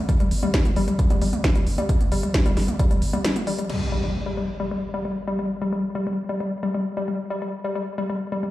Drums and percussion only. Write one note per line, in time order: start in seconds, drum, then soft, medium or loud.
0.09 kick loud
0.09 closed hi-hat medium
0.20 closed hi-hat soft
0.20 mid tom medium
0.31 open hi-hat loud
0.43 closed hi-hat medium
0.43 mid tom medium
0.54 kick loud
0.54 snare loud
0.54 closed hi-hat medium
0.65 closed hi-hat medium
0.65 mid tom loud
0.76 open hi-hat medium
0.88 closed hi-hat medium
0.88 mid tom medium
0.99 kick loud
0.99 closed hi-hat medium
1.10 closed hi-hat medium
1.10 mid tom loud
1.22 open hi-hat loud
1.33 closed hi-hat soft
1.33 mid tom loud
1.44 kick loud
1.44 snare loud
1.44 closed hi-hat medium
1.55 closed hi-hat medium
1.55 mid tom medium
1.67 open hi-hat medium
1.78 closed hi-hat medium
1.78 mid tom medium
1.89 kick loud
1.89 closed hi-hat medium
2.01 closed hi-hat medium
2.01 mid tom medium
2.12 open hi-hat loud
2.23 closed hi-hat medium
2.23 mid tom medium
2.34 kick loud
2.34 snare loud
2.34 closed hi-hat medium
2.46 closed hi-hat medium
2.46 mid tom medium
2.57 snare soft
2.57 open hi-hat medium
2.68 closed hi-hat medium
2.68 mid tom medium
2.79 kick loud
2.79 closed hi-hat medium
2.91 closed hi-hat medium
2.91 mid tom medium
3.02 open hi-hat loud
3.13 closed hi-hat medium
3.13 mid tom medium
3.25 snare loud
3.25 closed hi-hat medium
3.36 closed hi-hat medium
3.36 mid tom medium
3.47 open hi-hat medium
3.58 closed hi-hat medium
3.58 mid tom medium
3.70 crash medium